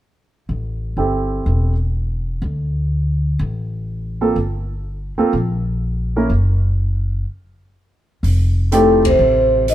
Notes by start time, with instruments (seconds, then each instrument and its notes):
0.49 upright bass A1
0.97 upright bass G1, grand piano C4 E4 G4 A4
1.46 upright bass E1
2.42 upright bass D2
3.39 upright bass A1
4.21 grand piano A#3 C4 F4 A4
4.36 upright bass G1
5.18 grand piano A#3 C4 F4 A4, muted upright bass stroke
5.33 upright bass A#1
6.16 grand piano A#3 C#4 E4 A#4
6.30 upright bass F#1
8.23 upright bass F1, open hi-hat
8.72 trombone A2, grand piano A3 C4 D#4 G4, vibraphone A4, closed hi-hat
9.05 trombone C3, vibraphone C5, kick, ride
9.19 upright bass A1
9.68 trombone D#3, vibraphone D#5, closed hi-hat